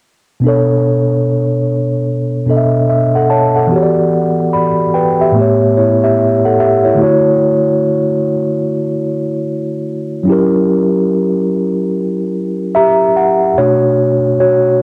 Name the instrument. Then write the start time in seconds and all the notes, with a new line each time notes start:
tine electric piano
0.40 B2 B3
0.44 D4 A4
0.48 C#5
2.46 B2 B3 D4 A4
2.51 D#5
2.57 E5
2.90 E5
3.16 A4 F#5
3.30 C#5 A5
3.56 A4 F#5
3.67 E3 B3
3.72 F#4 G4
3.76 C#5
3.83 D5
4.53 D5 B5
4.94 B4 G5
5.21 G4 E5
5.32 A2 A3
5.36 B3 G4
5.41 C#5
5.77 E4 C#5
6.04 G4 E5
6.45 A4 F#5
6.60 G4 E5
6.85 E4 C#5
6.95 D3 A3 E4
7.01 F#4 C#5
10.23 F#3 C#4
10.28 E4 G4
10.32 A#4
12.75 G4 E5 A#5
13.17 F#5
13.58 B2 A3 D4 F#4 C#5
14.40 F#4 C#5